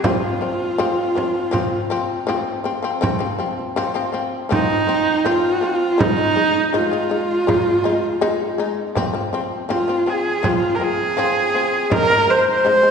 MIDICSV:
0, 0, Header, 1, 4, 480
1, 0, Start_track
1, 0, Tempo, 741656
1, 34, Time_signature, 4, 2, 24, 8
1, 8354, End_track
2, 0, Start_track
2, 0, Title_t, "Horsehead fiddle"
2, 0, Program_c, 0, 110
2, 0, Note_on_c, 0, 65, 86
2, 1485, Note_off_c, 0, 65, 0
2, 2925, Note_on_c, 0, 63, 107
2, 3407, Note_on_c, 0, 65, 96
2, 3417, Note_off_c, 0, 63, 0
2, 3880, Note_on_c, 0, 63, 116
2, 3890, Note_off_c, 0, 65, 0
2, 4370, Note_on_c, 0, 65, 91
2, 4379, Note_off_c, 0, 63, 0
2, 5562, Note_off_c, 0, 65, 0
2, 6288, Note_on_c, 0, 65, 88
2, 6531, Note_on_c, 0, 68, 86
2, 6540, Note_off_c, 0, 65, 0
2, 6776, Note_on_c, 0, 65, 96
2, 6786, Note_off_c, 0, 68, 0
2, 6958, Note_on_c, 0, 70, 71
2, 6967, Note_off_c, 0, 65, 0
2, 7010, Note_on_c, 0, 68, 102
2, 7019, Note_off_c, 0, 70, 0
2, 7720, Note_off_c, 0, 68, 0
2, 7729, Note_on_c, 0, 70, 120
2, 7961, Note_on_c, 0, 72, 100
2, 7971, Note_off_c, 0, 70, 0
2, 8076, Note_off_c, 0, 72, 0
2, 8096, Note_on_c, 0, 72, 103
2, 8354, Note_off_c, 0, 72, 0
2, 8354, End_track
3, 0, Start_track
3, 0, Title_t, "Shamisen"
3, 0, Program_c, 1, 106
3, 24, Note_on_c, 1, 53, 87
3, 32, Note_on_c, 1, 60, 88
3, 222, Note_off_c, 1, 53, 0
3, 226, Note_off_c, 1, 60, 0
3, 265, Note_on_c, 1, 53, 64
3, 272, Note_on_c, 1, 60, 68
3, 462, Note_off_c, 1, 53, 0
3, 466, Note_off_c, 1, 60, 0
3, 507, Note_on_c, 1, 53, 109
3, 514, Note_on_c, 1, 60, 116
3, 704, Note_off_c, 1, 53, 0
3, 707, Note_off_c, 1, 60, 0
3, 747, Note_on_c, 1, 53, 77
3, 753, Note_on_c, 1, 60, 83
3, 944, Note_off_c, 1, 53, 0
3, 947, Note_off_c, 1, 60, 0
3, 979, Note_on_c, 1, 53, 105
3, 987, Note_on_c, 1, 60, 110
3, 1180, Note_off_c, 1, 53, 0
3, 1184, Note_off_c, 1, 60, 0
3, 1230, Note_on_c, 1, 53, 87
3, 1237, Note_on_c, 1, 60, 102
3, 1426, Note_off_c, 1, 53, 0
3, 1429, Note_off_c, 1, 60, 0
3, 1467, Note_on_c, 1, 53, 103
3, 1479, Note_on_c, 1, 60, 114
3, 1665, Note_off_c, 1, 53, 0
3, 1670, Note_off_c, 1, 60, 0
3, 1709, Note_on_c, 1, 53, 73
3, 1717, Note_on_c, 1, 60, 89
3, 1810, Note_off_c, 1, 53, 0
3, 1814, Note_off_c, 1, 60, 0
3, 1828, Note_on_c, 1, 53, 72
3, 1839, Note_on_c, 1, 60, 86
3, 1929, Note_off_c, 1, 53, 0
3, 1934, Note_off_c, 1, 60, 0
3, 1947, Note_on_c, 1, 53, 91
3, 1954, Note_on_c, 1, 60, 113
3, 2049, Note_off_c, 1, 53, 0
3, 2052, Note_off_c, 1, 60, 0
3, 2065, Note_on_c, 1, 53, 74
3, 2074, Note_on_c, 1, 60, 93
3, 2167, Note_off_c, 1, 53, 0
3, 2172, Note_off_c, 1, 60, 0
3, 2191, Note_on_c, 1, 53, 71
3, 2198, Note_on_c, 1, 60, 79
3, 2387, Note_off_c, 1, 53, 0
3, 2390, Note_off_c, 1, 60, 0
3, 2435, Note_on_c, 1, 53, 98
3, 2442, Note_on_c, 1, 60, 118
3, 2533, Note_off_c, 1, 53, 0
3, 2536, Note_off_c, 1, 60, 0
3, 2552, Note_on_c, 1, 53, 82
3, 2560, Note_on_c, 1, 60, 94
3, 2651, Note_off_c, 1, 53, 0
3, 2655, Note_off_c, 1, 60, 0
3, 2670, Note_on_c, 1, 53, 73
3, 2678, Note_on_c, 1, 60, 91
3, 2866, Note_off_c, 1, 53, 0
3, 2870, Note_off_c, 1, 60, 0
3, 2907, Note_on_c, 1, 53, 92
3, 2916, Note_on_c, 1, 60, 105
3, 3105, Note_off_c, 1, 53, 0
3, 3109, Note_off_c, 1, 60, 0
3, 3154, Note_on_c, 1, 53, 70
3, 3162, Note_on_c, 1, 60, 83
3, 3348, Note_off_c, 1, 53, 0
3, 3352, Note_off_c, 1, 60, 0
3, 3395, Note_on_c, 1, 53, 85
3, 3403, Note_on_c, 1, 60, 101
3, 3589, Note_off_c, 1, 53, 0
3, 3593, Note_off_c, 1, 60, 0
3, 3632, Note_on_c, 1, 53, 68
3, 3642, Note_on_c, 1, 60, 78
3, 3827, Note_off_c, 1, 53, 0
3, 3832, Note_off_c, 1, 60, 0
3, 3870, Note_on_c, 1, 56, 85
3, 3878, Note_on_c, 1, 63, 93
3, 3970, Note_off_c, 1, 56, 0
3, 3974, Note_off_c, 1, 63, 0
3, 3992, Note_on_c, 1, 56, 67
3, 4001, Note_on_c, 1, 63, 72
3, 4091, Note_off_c, 1, 56, 0
3, 4095, Note_off_c, 1, 63, 0
3, 4114, Note_on_c, 1, 56, 64
3, 4122, Note_on_c, 1, 63, 70
3, 4308, Note_off_c, 1, 56, 0
3, 4312, Note_off_c, 1, 63, 0
3, 4354, Note_on_c, 1, 56, 79
3, 4362, Note_on_c, 1, 63, 95
3, 4452, Note_off_c, 1, 56, 0
3, 4456, Note_off_c, 1, 63, 0
3, 4475, Note_on_c, 1, 56, 72
3, 4484, Note_on_c, 1, 63, 84
3, 4572, Note_off_c, 1, 56, 0
3, 4577, Note_off_c, 1, 63, 0
3, 4592, Note_on_c, 1, 56, 68
3, 4602, Note_on_c, 1, 63, 74
3, 4787, Note_off_c, 1, 56, 0
3, 4791, Note_off_c, 1, 63, 0
3, 4836, Note_on_c, 1, 56, 85
3, 4843, Note_on_c, 1, 63, 103
3, 5028, Note_off_c, 1, 56, 0
3, 5032, Note_off_c, 1, 63, 0
3, 5074, Note_on_c, 1, 56, 86
3, 5082, Note_on_c, 1, 63, 93
3, 5267, Note_off_c, 1, 56, 0
3, 5271, Note_off_c, 1, 63, 0
3, 5316, Note_on_c, 1, 56, 124
3, 5319, Note_on_c, 1, 63, 127
3, 5508, Note_off_c, 1, 56, 0
3, 5510, Note_off_c, 1, 63, 0
3, 5555, Note_on_c, 1, 56, 79
3, 5563, Note_on_c, 1, 63, 91
3, 5747, Note_off_c, 1, 56, 0
3, 5751, Note_off_c, 1, 63, 0
3, 5795, Note_on_c, 1, 53, 94
3, 5805, Note_on_c, 1, 60, 107
3, 5891, Note_off_c, 1, 53, 0
3, 5896, Note_off_c, 1, 60, 0
3, 5912, Note_on_c, 1, 53, 82
3, 5919, Note_on_c, 1, 60, 84
3, 6010, Note_off_c, 1, 53, 0
3, 6013, Note_off_c, 1, 60, 0
3, 6037, Note_on_c, 1, 53, 73
3, 6045, Note_on_c, 1, 60, 82
3, 6228, Note_off_c, 1, 53, 0
3, 6232, Note_off_c, 1, 60, 0
3, 6270, Note_on_c, 1, 53, 90
3, 6279, Note_on_c, 1, 60, 96
3, 6368, Note_off_c, 1, 53, 0
3, 6373, Note_off_c, 1, 60, 0
3, 6393, Note_on_c, 1, 53, 66
3, 6402, Note_on_c, 1, 60, 83
3, 6490, Note_off_c, 1, 53, 0
3, 6494, Note_off_c, 1, 60, 0
3, 6513, Note_on_c, 1, 53, 64
3, 6520, Note_on_c, 1, 60, 72
3, 6705, Note_off_c, 1, 53, 0
3, 6709, Note_off_c, 1, 60, 0
3, 6750, Note_on_c, 1, 53, 87
3, 6758, Note_on_c, 1, 60, 114
3, 6943, Note_off_c, 1, 53, 0
3, 6948, Note_off_c, 1, 60, 0
3, 6989, Note_on_c, 1, 53, 66
3, 6998, Note_on_c, 1, 60, 77
3, 7183, Note_off_c, 1, 53, 0
3, 7187, Note_off_c, 1, 60, 0
3, 7228, Note_on_c, 1, 53, 101
3, 7238, Note_on_c, 1, 60, 107
3, 7422, Note_off_c, 1, 53, 0
3, 7427, Note_off_c, 1, 60, 0
3, 7471, Note_on_c, 1, 53, 71
3, 7479, Note_on_c, 1, 60, 72
3, 7663, Note_off_c, 1, 53, 0
3, 7667, Note_off_c, 1, 60, 0
3, 7703, Note_on_c, 1, 56, 78
3, 7710, Note_on_c, 1, 63, 90
3, 7803, Note_off_c, 1, 56, 0
3, 7806, Note_off_c, 1, 63, 0
3, 7831, Note_on_c, 1, 56, 72
3, 7839, Note_on_c, 1, 63, 70
3, 7927, Note_off_c, 1, 56, 0
3, 7931, Note_off_c, 1, 63, 0
3, 7945, Note_on_c, 1, 56, 68
3, 7952, Note_on_c, 1, 63, 64
3, 8139, Note_off_c, 1, 56, 0
3, 8143, Note_off_c, 1, 63, 0
3, 8185, Note_on_c, 1, 56, 78
3, 8191, Note_on_c, 1, 63, 90
3, 8283, Note_off_c, 1, 56, 0
3, 8286, Note_off_c, 1, 63, 0
3, 8305, Note_on_c, 1, 56, 71
3, 8312, Note_on_c, 1, 63, 76
3, 8354, Note_off_c, 1, 56, 0
3, 8354, Note_off_c, 1, 63, 0
3, 8354, End_track
4, 0, Start_track
4, 0, Title_t, "Frame drum"
4, 27, Note_on_c, 9, 64, 85
4, 91, Note_off_c, 9, 64, 0
4, 275, Note_on_c, 9, 64, 27
4, 340, Note_off_c, 9, 64, 0
4, 518, Note_on_c, 9, 64, 56
4, 583, Note_off_c, 9, 64, 0
4, 761, Note_on_c, 9, 64, 60
4, 826, Note_off_c, 9, 64, 0
4, 996, Note_on_c, 9, 64, 64
4, 1061, Note_off_c, 9, 64, 0
4, 1237, Note_on_c, 9, 64, 26
4, 1302, Note_off_c, 9, 64, 0
4, 1486, Note_on_c, 9, 64, 56
4, 1550, Note_off_c, 9, 64, 0
4, 1726, Note_on_c, 9, 64, 23
4, 1790, Note_off_c, 9, 64, 0
4, 1964, Note_on_c, 9, 64, 72
4, 2028, Note_off_c, 9, 64, 0
4, 2323, Note_on_c, 9, 64, 25
4, 2388, Note_off_c, 9, 64, 0
4, 2443, Note_on_c, 9, 64, 58
4, 2507, Note_off_c, 9, 64, 0
4, 2685, Note_on_c, 9, 64, 25
4, 2749, Note_off_c, 9, 64, 0
4, 2926, Note_on_c, 9, 64, 74
4, 2991, Note_off_c, 9, 64, 0
4, 3285, Note_on_c, 9, 64, 26
4, 3349, Note_off_c, 9, 64, 0
4, 3401, Note_on_c, 9, 64, 61
4, 3466, Note_off_c, 9, 64, 0
4, 3886, Note_on_c, 9, 64, 83
4, 3951, Note_off_c, 9, 64, 0
4, 4243, Note_on_c, 9, 64, 26
4, 4308, Note_off_c, 9, 64, 0
4, 4367, Note_on_c, 9, 64, 58
4, 4432, Note_off_c, 9, 64, 0
4, 4607, Note_on_c, 9, 64, 25
4, 4671, Note_off_c, 9, 64, 0
4, 4845, Note_on_c, 9, 64, 65
4, 4910, Note_off_c, 9, 64, 0
4, 5203, Note_on_c, 9, 64, 23
4, 5268, Note_off_c, 9, 64, 0
4, 5327, Note_on_c, 9, 64, 52
4, 5392, Note_off_c, 9, 64, 0
4, 5801, Note_on_c, 9, 64, 70
4, 5866, Note_off_c, 9, 64, 0
4, 6282, Note_on_c, 9, 64, 59
4, 6347, Note_off_c, 9, 64, 0
4, 6521, Note_on_c, 9, 64, 24
4, 6585, Note_off_c, 9, 64, 0
4, 6758, Note_on_c, 9, 64, 66
4, 6822, Note_off_c, 9, 64, 0
4, 7120, Note_on_c, 9, 64, 25
4, 7185, Note_off_c, 9, 64, 0
4, 7238, Note_on_c, 9, 64, 52
4, 7303, Note_off_c, 9, 64, 0
4, 7712, Note_on_c, 9, 64, 80
4, 7776, Note_off_c, 9, 64, 0
4, 8077, Note_on_c, 9, 64, 24
4, 8142, Note_off_c, 9, 64, 0
4, 8196, Note_on_c, 9, 64, 59
4, 8260, Note_off_c, 9, 64, 0
4, 8354, End_track
0, 0, End_of_file